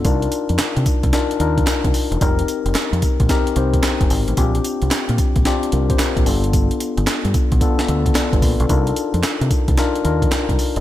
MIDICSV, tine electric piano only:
0, 0, Header, 1, 2, 480
1, 0, Start_track
1, 0, Tempo, 540541
1, 43, Time_signature, 4, 2, 24, 8
1, 9593, End_track
2, 0, Start_track
2, 0, Title_t, "Tine electric piano"
2, 0, Program_c, 0, 4
2, 0, Control_c, 0, 64, 127
2, 47, Note_on_c, 0, 62, 92
2, 49, Note_on_c, 0, 63, 82
2, 53, Control_c, 0, 64, 0
2, 53, Note_on_c, 0, 65, 78
2, 56, Note_on_c, 0, 70, 97
2, 201, Control_c, 0, 64, 127
2, 846, Note_off_c, 0, 62, 0
2, 847, Note_off_c, 0, 63, 0
2, 849, Note_off_c, 0, 65, 0
2, 851, Note_off_c, 0, 70, 0
2, 1005, Note_on_c, 0, 62, 99
2, 1009, Note_on_c, 0, 63, 91
2, 1014, Note_on_c, 0, 65, 82
2, 1016, Note_on_c, 0, 70, 101
2, 1212, Note_off_c, 0, 62, 0
2, 1214, Note_off_c, 0, 63, 0
2, 1217, Note_off_c, 0, 65, 0
2, 1218, Note_off_c, 0, 70, 0
2, 1246, Note_on_c, 0, 62, 84
2, 1247, Note_on_c, 0, 63, 76
2, 1251, Note_on_c, 0, 65, 80
2, 1256, Note_on_c, 0, 70, 88
2, 1862, Note_off_c, 0, 62, 0
2, 1863, Note_off_c, 0, 63, 0
2, 1865, Note_off_c, 0, 65, 0
2, 1867, Note_off_c, 0, 70, 0
2, 1965, Note_on_c, 0, 60, 85
2, 1970, Note_on_c, 0, 63, 83
2, 1973, Note_on_c, 0, 67, 76
2, 1975, Control_c, 0, 64, 0
2, 1976, Note_on_c, 0, 70, 106
2, 2118, Control_c, 0, 64, 127
2, 2765, Note_off_c, 0, 60, 0
2, 2767, Note_off_c, 0, 63, 0
2, 2769, Note_off_c, 0, 67, 0
2, 2771, Note_off_c, 0, 70, 0
2, 2924, Note_on_c, 0, 60, 99
2, 2929, Note_on_c, 0, 63, 89
2, 2932, Note_on_c, 0, 67, 93
2, 2935, Note_on_c, 0, 70, 109
2, 3132, Note_off_c, 0, 60, 0
2, 3134, Note_off_c, 0, 63, 0
2, 3136, Note_off_c, 0, 67, 0
2, 3137, Note_off_c, 0, 70, 0
2, 3167, Note_on_c, 0, 60, 83
2, 3171, Note_on_c, 0, 63, 72
2, 3174, Note_on_c, 0, 67, 76
2, 3176, Note_on_c, 0, 72, 85
2, 3783, Note_off_c, 0, 60, 0
2, 3785, Note_off_c, 0, 63, 0
2, 3786, Note_off_c, 0, 67, 0
2, 3788, Note_off_c, 0, 72, 0
2, 3883, Note_on_c, 0, 60, 89
2, 3887, Note_on_c, 0, 62, 85
2, 3891, Note_on_c, 0, 65, 82
2, 3893, Control_c, 0, 64, 0
2, 3894, Note_on_c, 0, 67, 101
2, 4063, Control_c, 0, 64, 127
2, 4684, Note_off_c, 0, 60, 0
2, 4686, Note_off_c, 0, 62, 0
2, 4688, Note_off_c, 0, 65, 0
2, 4689, Note_off_c, 0, 67, 0
2, 4843, Note_on_c, 0, 60, 97
2, 4846, Note_on_c, 0, 62, 87
2, 4850, Note_on_c, 0, 65, 90
2, 4854, Note_on_c, 0, 67, 104
2, 5051, Note_off_c, 0, 60, 0
2, 5053, Note_off_c, 0, 62, 0
2, 5055, Note_off_c, 0, 65, 0
2, 5057, Note_off_c, 0, 67, 0
2, 5088, Note_on_c, 0, 70, 65
2, 5093, Note_on_c, 0, 65, 53
2, 5232, Note_off_c, 0, 70, 0
2, 5235, Note_off_c, 0, 65, 0
2, 5240, Note_on_c, 0, 72, 73
2, 5245, Note_on_c, 0, 67, 62
2, 5320, Note_off_c, 0, 72, 0
2, 5322, Note_off_c, 0, 67, 0
2, 5327, Note_on_c, 0, 70, 72
2, 5333, Note_on_c, 0, 65, 61
2, 5472, Note_off_c, 0, 70, 0
2, 5475, Note_off_c, 0, 65, 0
2, 5480, Note_on_c, 0, 67, 65
2, 5486, Note_on_c, 0, 62, 52
2, 5552, Note_off_c, 0, 62, 0
2, 5560, Note_on_c, 0, 59, 91
2, 5563, Note_on_c, 0, 62, 76
2, 5568, Note_on_c, 0, 65, 76
2, 5571, Note_on_c, 0, 69, 94
2, 5574, Control_c, 0, 64, 0
2, 5707, Note_off_c, 0, 67, 0
2, 5748, Control_c, 0, 64, 127
2, 6362, Note_off_c, 0, 59, 0
2, 6364, Note_off_c, 0, 62, 0
2, 6367, Note_off_c, 0, 65, 0
2, 6368, Note_off_c, 0, 69, 0
2, 6759, Note_on_c, 0, 59, 95
2, 6762, Note_on_c, 0, 62, 89
2, 6766, Note_on_c, 0, 65, 87
2, 6771, Note_on_c, 0, 69, 105
2, 6969, Note_off_c, 0, 59, 0
2, 6971, Note_off_c, 0, 62, 0
2, 6973, Note_off_c, 0, 65, 0
2, 6975, Note_off_c, 0, 69, 0
2, 7002, Note_on_c, 0, 59, 76
2, 7007, Note_on_c, 0, 62, 76
2, 7009, Note_on_c, 0, 65, 73
2, 7014, Note_on_c, 0, 69, 87
2, 7240, Note_off_c, 0, 69, 0
2, 7244, Note_off_c, 0, 62, 0
2, 7246, Note_off_c, 0, 65, 0
2, 7246, Note_on_c, 0, 74, 70
2, 7250, Note_on_c, 0, 69, 53
2, 7391, Note_off_c, 0, 74, 0
2, 7394, Note_off_c, 0, 69, 0
2, 7397, Note_on_c, 0, 71, 71
2, 7403, Note_on_c, 0, 65, 62
2, 7621, Note_off_c, 0, 59, 0
2, 7625, Note_off_c, 0, 71, 0
2, 7628, Note_off_c, 0, 65, 0
2, 7637, Note_on_c, 0, 69, 65
2, 7644, Note_on_c, 0, 62, 55
2, 7710, Note_off_c, 0, 62, 0
2, 7720, Note_on_c, 0, 62, 93
2, 7723, Note_on_c, 0, 63, 78
2, 7728, Note_on_c, 0, 65, 82
2, 7731, Note_on_c, 0, 70, 98
2, 7735, Control_c, 0, 64, 0
2, 7865, Note_off_c, 0, 69, 0
2, 7868, Control_c, 0, 64, 127
2, 8523, Note_off_c, 0, 62, 0
2, 8524, Note_off_c, 0, 63, 0
2, 8527, Note_off_c, 0, 65, 0
2, 8528, Note_off_c, 0, 70, 0
2, 8681, Note_on_c, 0, 62, 100
2, 8683, Note_on_c, 0, 63, 91
2, 8687, Note_on_c, 0, 65, 96
2, 8691, Note_on_c, 0, 70, 107
2, 8890, Note_off_c, 0, 62, 0
2, 8891, Note_off_c, 0, 63, 0
2, 8893, Note_off_c, 0, 65, 0
2, 8895, Note_off_c, 0, 70, 0
2, 8923, Note_on_c, 0, 62, 85
2, 8925, Note_on_c, 0, 63, 76
2, 8929, Note_on_c, 0, 65, 76
2, 8932, Note_on_c, 0, 70, 86
2, 9541, Note_off_c, 0, 62, 0
2, 9542, Note_off_c, 0, 63, 0
2, 9544, Note_off_c, 0, 65, 0
2, 9546, Note_off_c, 0, 70, 0
2, 9593, End_track
0, 0, End_of_file